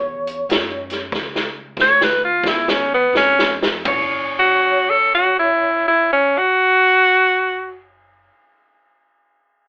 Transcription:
Already playing: upright bass E2, clean electric guitar C#5
0.27 closed hi-hat
0.49 upright bass F#2, snare, closed hi-hat
0.90 snare, closed hi-hat
1.12 upright bass C#2, kick, snare
1.35 snare
1.77 upright bass D2, kick, snare
1.81 tenor saxophone C#5
2.01 tenor saxophone B4, snare
2.24 tenor saxophone F4
2.43 upright bass E2, kick, snare
2.47 tenor saxophone E4
2.68 tenor saxophone C#4, snare
2.94 tenor saxophone B3
3.13 upright bass F2, snare
3.17 tenor saxophone C#4
3.39 snare
3.62 snare
3.85 upright bass F#1, clean electric guitar C#5, kick, floor tom, ride bell
4.39 tenor saxophone F#4
4.90 tenor saxophone A4
5.15 tenor saxophone F#4
5.39 tenor saxophone E4
5.88 tenor saxophone E4
6.13 tenor saxophone C#4
6.38 tenor saxophone F#4

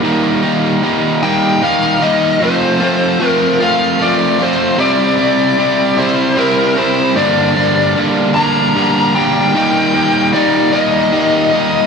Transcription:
0.03 overdriven electric guitar D#3 G3 A#3 D#4
0.42 overdriven electric guitar G3 A#3 D#4
0.82 overdriven electric guitar D#3 G3 A#3 D#4
1.22 overdriven electric guitar G3 A#3 D#4, lead electric guitar G5
1.62 overdriven electric guitar D#3 G3 A#3 D#4, lead electric guitar F5
2.01 overdriven electric guitar G3 A#3 D#4, lead electric guitar D#5
2.40 overdriven electric guitar F3 A3 C4 F4, lead electric guitar C5
2.80 overdriven electric guitar A3 C4 F4
3.20 overdriven electric guitar F3 A3 C4 F4
3.27 lead electric guitar A#4
3.60 overdriven electric guitar A3 C4 F4, lead electric guitar F5
3.99 overdriven electric guitar F3 A3 C4 F4, lead electric guitar D5
4.39 overdriven electric guitar A3 C4 F4, lead electric guitar C5
4.78 overdriven electric guitar C3 G3 C4 E4, lead electric guitar D5
5.18 overdriven electric guitar G3 C4 E4
5.58 overdriven electric guitar C3 G3 C4 E4
5.97 overdriven electric guitar G3 C4 E4, lead electric guitar C5
6.36 overdriven electric guitar C3 G3 C4 E4, lead electric guitar A#4
6.76 overdriven electric guitar G3 C4 E4, lead electric guitar C5
7.15 overdriven electric guitar G2 D3 G3 A#3 D4, lead electric guitar D5
7.56 overdriven electric guitar G3 A#3 D4
7.96 overdriven electric guitar D3 G3 A#3 D4
8.34 overdriven electric guitar A#3 D4, lead electric guitar A#5
8.39 overdriven electric guitar G3
8.75 overdriven electric guitar D3 G3 A#3 D4
9.15 overdriven electric guitar G3 A#3 D4, lead electric guitar G5
9.54 overdriven electric guitar D#3 G3 A#3 D#4
9.95 overdriven electric guitar G3 A#3 D#4
10.33 overdriven electric guitar D#3 G3 A#3 D#4, lead electric guitar D5
10.72 overdriven electric guitar G3 A#3 D#4, lead electric guitar D#5
11.12 overdriven electric guitar D#3 G3 A#3 D#4
11.53 overdriven electric guitar G3 A#3 D#4

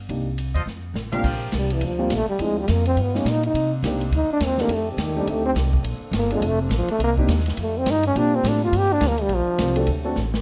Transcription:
0.09 upright bass C2, grand piano A#3 D4 D#4 G4, ride
0.38 hi-hat pedal, ride
0.54 upright bass D#2, trumpet section F4 A4 C5 D#5, ride
0.66 upright bass F2, snare
0.94 upright bass A1, snare, hi-hat pedal
1.12 grand piano A#2 G3 C4 D4 F4, trumpet section G4 A#4 C5 F5, mid tom
1.23 upright bass A#1, trombone section C3 G3 A#3 D4, kick, crash
1.52 upright bass C2, snare, hi-hat pedal, ride
1.58 trombone G3
1.70 trombone E3, ride
1.81 upright bass D2, ride
1.86 trombone F3
1.98 grand piano G3 A#3 C4 D4 F4
2.10 upright bass A#1, snare, hi-hat pedal, ride
2.14 trombone A3
2.27 trombone G3, muted upright bass stroke
2.38 upright bass D2, trombone section D3 G#3 C4 F4, grand piano F3 G#3 C4 D4 E4, ride
2.42 trombone G#3
2.59 trombone G3
2.68 upright bass F2, trombone A#3, snare, hi-hat pedal, ride
2.86 trombone C4, ride
2.96 upright bass G2, trombone section D#3 G3 B3, ride
3.02 trombone B3
3.14 grand piano G3 A#3 B3 D#4 G4, trombone C#4, snare
3.25 upright bass A#2, snare, hi-hat pedal, ride
3.30 trombone D#4
3.43 trombone D#4, ride
3.54 upright bass C3, trombone section A#3 C4 D4 D#4, ride
3.83 upright bass C2, grand piano A#3 C4 D4 D#4 G4, snare, hi-hat pedal, ride
4.01 ride
4.11 upright bass D2, ride
4.16 trombone D#4
4.32 trombone D4
4.40 upright bass D#2, snare, hi-hat pedal, ride
4.45 trombone C4
4.58 grand piano A3 C4 D4 D#4 G4, trombone A#3, snare
4.68 upright bass F2, trombone section D#3 A3 G4 D5, ride
4.74 trombone A3
4.91 trombone C3
4.97 upright bass D#2, snare, hi-hat pedal, ride
5.02 trombone D#3
5.16 trombone G3, grand piano A3 C4 D4 D#4 G4
5.26 upright bass D2, trombone A3, ride
5.46 trombone C4
5.55 upright bass C2, snare, hi-hat pedal, ride
5.73 kick
5.83 upright bass A#1, trombone section A#3 C4 D4 A4, ride
6.00 muted upright bass stroke
6.11 upright bass G1, snare, hi-hat pedal, ride
6.17 trombone A#3
6.31 trombone G#3, grand piano A#3 C4 D4 F4 A4, ride
6.41 upright bass F1, ride
6.47 trombone A3
6.62 trombone C3
6.69 upright bass A1, snare, hi-hat pedal, ride
6.76 trombone F3
6.88 trombone A3, muted upright bass stroke, ride
6.99 upright bass C2, trombone section A#3 D#4, ride
7.04 trombone A#3
7.18 grand piano A#3 C4 D4 D#4 G4, kick
7.28 upright bass D#2, snare, hi-hat pedal, ride
7.39 snare
7.46 snare, ride
7.57 upright bass F2, trombone section D#3 G3 A3 F4, ride
7.62 trombone A3
7.78 trombone C4
7.85 upright bass G2, snare, hi-hat pedal, ride
7.90 trombone D#4
8.03 trombone C#4, ride
8.16 upright bass A#2, trombone section C3 A#3 D4, grand piano A#3 C4 D4 F4 G4, trombone D4, ride
8.35 trombone C4
8.44 upright bass A2, snare, hi-hat pedal, ride
8.48 trombone D4
8.64 trombone F4
8.72 upright bass G2, ride
8.78 trombone G4
8.93 trombone D4
9.01 upright bass D2, snare, hi-hat pedal, ride
9.07 trombone A#3
9.18 ride
9.22 trombone G3
9.29 upright bass A#1, ride
9.35 trombone F3
9.47 muted upright bass stroke
9.58 upright bass C2, snare, hi-hat pedal, ride
9.76 grand piano A3 C4 D4 F#4 A4, ride
9.86 upright bass D2, trombone section F#3 A3, ride
10.04 grand piano A3 C4 D4 F#4 A4
10.16 upright bass A1, snare, hi-hat pedal
10.34 snare

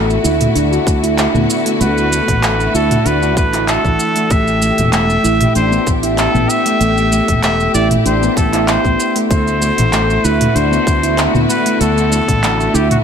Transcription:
Already playing: fretless electric bass A1, string section D3 A3 E4 F#4
0.10 shaker
0.24 fretless electric bass D2, handpan E4, shaker
0.41 mid tom, open hi-hat, shaker
0.55 fretless electric bass D2, handpan D4, open hi-hat, shaker
0.72 handpan F#4, shaker
0.87 fretless electric bass D2, kick, shaker
1.03 handpan E4, open hi-hat, shaker
1.18 clap, open hi-hat, shaker
1.34 fretless electric bass D2, handpan B3, mid tom, shaker
1.50 shaker
1.66 handpan A3, open hi-hat, shaker
1.81 fretless electric bass D2, handpan A3, muted trumpet B4, open hi-hat, shaker
1.98 shaker
2.11 handpan A3, shaker
2.28 fretless electric bass A1, kick, mid tom, open hi-hat, shaker
2.43 handpan A3, clap, open hi-hat, shaker
2.60 shaker
2.74 fretless electric bass D2, handpan E4, muted trumpet A4, shaker
2.91 mid tom, open hi-hat, shaker
3.05 fretless electric bass D2, handpan D4, muted trumpet B4, open hi-hat, shaker
3.22 handpan F#4, shaker
3.37 fretless electric bass A1, handpan A3, muted trumpet B4, kick, shaker
3.53 handpan E4, clap, open hi-hat, shaker
3.68 muted trumpet A4, clap, open hi-hat, shaker
3.84 fretless electric bass A1, handpan E3, kick, shaker
4.00 shaker
4.16 handpan A3, open hi-hat, shaker
4.30 fretless electric bass A1, handpan A3, string section A3 G4, muted trumpet E5, kick, open hi-hat, shaker
4.48 shaker
4.62 handpan A3, shaker
4.78 fretless electric bass E1, mid tom, open hi-hat, shaker
4.93 handpan A3, muted trumpet E5, clap, open hi-hat, shaker
5.10 shaker
5.24 fretless electric bass A1, handpan E4, shaker
5.41 mid tom, open hi-hat, shaker
5.55 fretless electric bass A1, handpan D4, muted trumpet C5, open hi-hat, shaker
5.72 handpan B3, shaker
5.87 fretless electric bass A1, kick, shaker
6.03 handpan E4, open hi-hat, shaker
6.18 muted trumpet A4, clap, open hi-hat, shaker
6.34 fretless electric bass A1, handpan B3, mid tom, shaker
6.49 muted trumpet E5, shaker
6.66 handpan A3, open hi-hat, shaker
6.80 fretless electric bass A1, handpan A3, open hi-hat, shaker
6.98 shaker
7.12 handpan A3, shaker
7.28 fretless electric bass E1, kick, mid tom, open hi-hat, shaker
7.43 handpan A3, muted trumpet E5, clap, open hi-hat, shaker
7.60 shaker
7.74 fretless electric bass A1, handpan E4, muted trumpet D5, shaker
7.91 mid tom, open hi-hat, shaker
8.05 fretless electric bass A1, handpan D4, muted trumpet C5, open hi-hat, shaker
8.22 handpan B3, shaker
8.37 fretless electric bass A1, muted trumpet A4, kick, shaker
8.53 handpan E4, clap, open hi-hat, shaker
8.68 muted trumpet C5, clap, open hi-hat, shaker
8.84 fretless electric bass A1, handpan B3, kick, shaker
9.00 shaker
9.16 handpan A3, open hi-hat, shaker
9.30 fretless electric bass D2, string section D3 E4 F#4, handpan A3, muted trumpet C5, kick, open hi-hat, shaker
9.48 shaker
9.62 handpan A3, shaker
9.78 fretless electric bass A1, mid tom, open hi-hat, shaker
9.93 handpan A3, clap, open hi-hat, shaker
10.10 shaker
10.24 fretless electric bass D2, handpan E4, muted trumpet B4, shaker
10.41 mid tom, open hi-hat, shaker
10.55 fretless electric bass D2, handpan D4, muted trumpet C5, open hi-hat, shaker
10.72 handpan B3, shaker
10.87 fretless electric bass D2, kick, shaker
11.03 handpan E4, open hi-hat, shaker
11.18 clap, open hi-hat, shaker
11.34 fretless electric bass D2, handpan B3, mid tom, shaker
11.50 muted trumpet B4, shaker
11.66 handpan A3, open hi-hat, shaker
11.80 fretless electric bass D2, handpan A3, muted trumpet A4, open hi-hat, shaker
11.98 shaker
12.12 handpan A3, shaker
12.28 fretless electric bass A1, kick, mid tom, open hi-hat, shaker
12.43 handpan A3, clap, open hi-hat, shaker
12.60 shaker
12.74 fretless electric bass D2, handpan E4, muted trumpet G4, shaker
12.91 muted trumpet F#4, mid tom, open hi-hat, shaker

